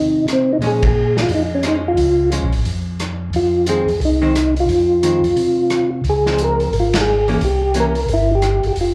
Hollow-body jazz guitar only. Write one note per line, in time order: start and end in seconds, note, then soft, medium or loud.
0.00 0.20 D#3 soft
0.00 0.20 G#3 medium
0.00 0.20 C4 medium
0.62 0.81 F3 soft
0.62 0.81 G#3 soft
0.62 0.81 C#4 soft
1.64 1.83 F3 soft
1.64 1.83 G#3 soft
1.64 1.83 C#4 medium
2.32 2.51 F3 soft
2.32 2.51 G#3 soft
2.32 2.51 C#4 soft
3.68 3.87 D#3 soft
3.68 3.87 G#3 soft
3.68 3.87 C4 medium
4.22 4.34 D#3 medium
4.22 4.34 G#3 medium
4.22 4.34 C4 medium
5.03 5.22 D#3 soft
5.03 5.23 G#3 soft
5.03 5.23 C4 soft
6.27 6.71 F3 soft
6.27 6.71 G#3 medium
6.27 6.71 C4 medium
7.28 7.40 E3 medium
7.28 7.40 A#3 medium
7.28 7.40 C#4 medium
7.74 7.94 E3 soft
7.74 7.94 A#3 soft
7.74 7.95 C#4 medium